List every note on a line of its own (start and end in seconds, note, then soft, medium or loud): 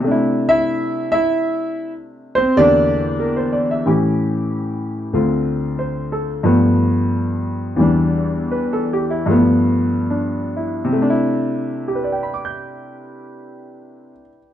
0.00 2.55 C3 medium
0.00 2.57 A3 soft
0.07 2.58 D4 soft
0.07 0.48 E4 medium
0.49 1.09 E4 medium
0.49 1.08 E5 loud
1.12 1.91 E4 medium
1.12 1.90 E5 loud
2.35 2.56 C4 medium
2.35 2.57 C5 medium
2.56 3.84 E2 soft
2.56 3.84 D3 soft
2.56 3.85 A#3 soft
2.56 3.85 G4 medium
2.56 3.51 D5 loud
2.61 3.82 D4 medium
3.20 3.51 A#4 soft
3.37 3.65 C5 soft
3.52 3.72 D5 soft
3.71 3.92 E5 soft
3.86 5.14 A2 soft
3.86 5.15 E3 soft
3.86 5.15 C#4 soft
3.86 5.15 G4 soft
5.13 6.42 D2 soft
5.13 6.43 D3 soft
5.13 6.43 C4 soft
5.13 6.43 F4 soft
5.79 6.29 C5 soft
6.12 6.57 A4 soft
6.43 7.78 G2 medium
6.43 7.79 F3 soft
6.43 7.78 A3 soft
6.43 7.79 B3 medium
7.76 9.25 E2 soft
7.76 9.26 E3 soft
7.76 9.27 G3 soft
7.82 9.28 D4 medium
8.51 8.87 B4 soft
8.73 9.04 A4 soft
8.93 9.14 G4 soft
9.10 9.36 E4 soft
9.26 10.96 G2 medium
9.26 10.98 F3 soft
9.26 10.91 A3 soft
9.31 10.99 B3 medium
10.10 10.79 D4 soft
10.56 11.08 E4 soft
10.85 14.12 C3 medium
10.93 14.20 A3 medium
11.02 14.29 D4 soft
11.10 14.37 E4 medium
11.88 14.54 G4 soft
11.95 14.54 B4 soft
12.04 14.54 D5 soft
12.12 14.54 G5 soft
12.23 14.54 B5 soft
12.34 14.54 D6 soft
12.45 14.54 G6 soft